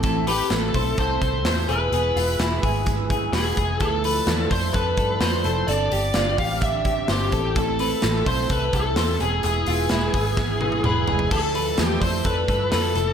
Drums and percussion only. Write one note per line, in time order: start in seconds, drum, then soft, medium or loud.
0.03 kick loud
0.03 hi-hat pedal medium
0.03 open hi-hat loud
0.27 hi-hat pedal medium
0.27 open hi-hat loud
0.50 snare loud
0.50 hi-hat pedal medium
0.50 open hi-hat loud
0.74 kick medium
0.74 hi-hat pedal medium
0.74 open hi-hat medium
0.98 kick loud
0.98 hi-hat pedal medium
0.98 open hi-hat loud
1.21 kick medium
1.21 hi-hat pedal medium
1.21 open hi-hat medium
1.45 snare loud
1.45 hi-hat pedal medium
1.45 open hi-hat loud
1.69 hi-hat pedal medium
1.69 open hi-hat medium
1.93 hi-hat pedal medium
1.93 open hi-hat medium
2.17 hi-hat pedal medium
2.17 open hi-hat medium
2.39 snare loud
2.39 hi-hat pedal medium
2.39 open hi-hat loud
2.63 kick medium
2.63 hi-hat pedal medium
2.63 open hi-hat medium
2.86 kick loud
2.86 hi-hat pedal medium
2.86 open hi-hat loud
3.10 kick medium
3.10 hi-hat pedal medium
3.10 open hi-hat medium
3.33 snare loud
3.33 hi-hat pedal medium
3.33 open hi-hat loud
3.57 kick medium
3.57 hi-hat pedal medium
3.57 open hi-hat medium
3.80 kick loud
3.80 hi-hat pedal medium
3.80 open hi-hat medium
4.04 hi-hat pedal medium
4.04 open hi-hat loud
4.27 snare loud
4.27 hi-hat pedal medium
4.27 open hi-hat loud
4.51 kick medium
4.51 hi-hat pedal medium
4.51 open hi-hat medium
4.74 kick loud
4.74 hi-hat pedal medium
4.74 open hi-hat medium
4.97 kick loud
4.97 hi-hat pedal medium
4.97 open hi-hat medium
5.21 snare loud
5.21 hi-hat pedal medium
5.21 open hi-hat medium
5.44 hi-hat pedal medium
5.44 open hi-hat medium
5.68 hi-hat pedal medium
5.68 open hi-hat loud
5.91 hi-hat pedal medium
5.91 open hi-hat medium
6.14 snare loud
6.14 hi-hat pedal medium
6.14 open hi-hat loud
6.38 kick medium
6.38 hi-hat pedal medium
6.38 open hi-hat medium
6.61 kick loud
6.61 hi-hat pedal medium
6.61 open hi-hat loud
6.85 kick medium
6.85 hi-hat pedal medium
6.85 open hi-hat medium
7.08 snare loud
7.08 hi-hat pedal medium
7.08 open hi-hat medium
7.32 kick medium
7.32 hi-hat pedal medium
7.32 open hi-hat medium
7.56 kick loud
7.56 hi-hat pedal medium
7.56 open hi-hat medium
7.79 hi-hat pedal medium
7.79 open hi-hat loud
8.02 snare loud
8.02 hi-hat pedal medium
8.02 open hi-hat loud
8.26 kick medium
8.26 hi-hat pedal medium
8.26 open hi-hat medium
8.49 kick loud
8.49 hi-hat pedal medium
8.49 open hi-hat loud
8.73 kick medium
8.73 hi-hat pedal medium
8.73 open hi-hat medium
8.96 snare loud
8.96 hi-hat pedal medium
8.96 open hi-hat loud
9.20 hi-hat pedal medium
9.20 open hi-hat medium
9.43 hi-hat pedal medium
9.43 open hi-hat medium
9.66 hi-hat pedal medium
9.66 open hi-hat loud
9.89 snare loud
9.89 hi-hat pedal medium
9.89 open hi-hat loud
10.14 kick loud
10.14 hi-hat pedal medium
10.14 open hi-hat medium
10.37 kick loud
10.37 snare medium
10.61 high tom medium
10.72 high tom medium
10.84 mid tom loud
11.07 floor tom loud
11.19 floor tom loud
11.31 kick loud
11.31 crash loud
11.55 hi-hat pedal medium
11.55 open hi-hat loud
11.78 snare loud
11.78 hi-hat pedal medium
11.78 open hi-hat medium
12.02 kick loud
12.02 hi-hat pedal medium
12.02 open hi-hat medium
12.25 kick loud
12.25 hi-hat pedal medium
12.25 open hi-hat medium
12.48 kick loud
12.48 hi-hat pedal medium
12.48 open hi-hat medium
12.72 snare loud
12.72 hi-hat pedal medium
12.72 open hi-hat medium
12.95 hi-hat pedal medium
12.95 open hi-hat medium